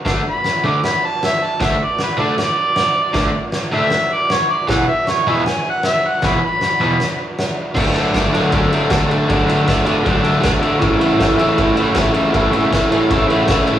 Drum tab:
CC |x-x-x-x-|x-x-x-x-|x-x-x-x-|x-x-x-x-|
RD |--------|--------|--------|--------|
SD |o-o-o-o-|o-o-o-o-|o-o-o-o-|o-o-o-o-|
BD |o-------|o-------|o-------|o-------|

CC |x-x-x-x-|x-------|--------|--------|
RD |--------|-xxxxxxx|xxxxxxxx|xxxxxxxx|
SD |o-o-o-o-|--o---o-|--o---o-|--o---o-|
BD |o-------|o-o-o-o-|o-o-o-o-|o-o-o-o-|

CC |--------|
RD |xxxxxxxx|
SD |--o---o-|
BD |o-o-o-o-|